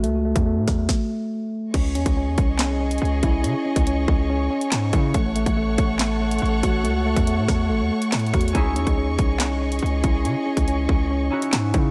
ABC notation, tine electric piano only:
X:1
M:4/4
L:1/8
Q:1/4=141
K:C#m
V:1 name="Tine electric piano"
[A,F] A, A,6 | C C C2 C C2 E | C C C2 C C2 E | A, A, A,2 A, A,2 F |
A, A, A,2 A, A,2 F | C C C2 C C2 E | C C C2 C C2 E |]